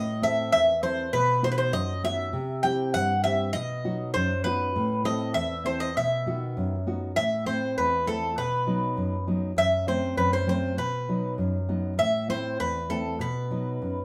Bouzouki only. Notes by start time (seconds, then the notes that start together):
Already playing: D#5
0.23 E5
0.52 E5
0.83 C5
1.13 B4
1.44 C5
1.52 B4
1.58 C5
1.73 D#5
2.05 E5
2.63 G5
2.94 F#5
3.24 E5
3.53 D#5
4.14 C5
4.44 B4
5.05 D#5
5.34 E5
5.66 C5
5.80 D#5
5.97 E5
7.16 E5
7.46 C5
7.78 B4
8.07 A4
8.38 B4
9.58 E5
9.88 C5
10.18 B4
10.33 C5
10.49 C5
10.78 B4
11.99 E5
12.30 C5
12.60 B4
12.90 A4
13.21 B4